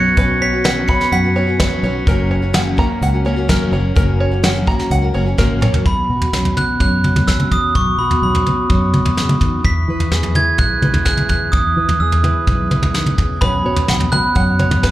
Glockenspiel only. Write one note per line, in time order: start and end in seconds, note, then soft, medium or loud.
0.00 0.38 C#7 medium
0.42 0.63 B6 medium
0.64 0.86 B6 medium
0.88 1.12 C#7 medium
1.12 1.79 B6 medium
5.87 6.59 B5 medium
6.57 6.79 F#6 medium
6.81 7.29 F#6 medium
7.28 7.52 E6 medium
7.52 7.74 D#6 medium
7.75 8.00 C#6 medium
7.99 8.22 B5 medium
8.23 9.13 B5 medium
9.65 10.31 B6 medium
10.36 10.60 G#6 medium
10.59 11.04 F#6 medium
11.05 11.29 F#6 medium
11.30 11.54 F#6 medium
11.52 12.01 D#6 medium
12.00 12.90 E6 medium
13.41 14.08 B5 medium
14.12 14.34 F#6 medium
14.35 14.91 F#6 medium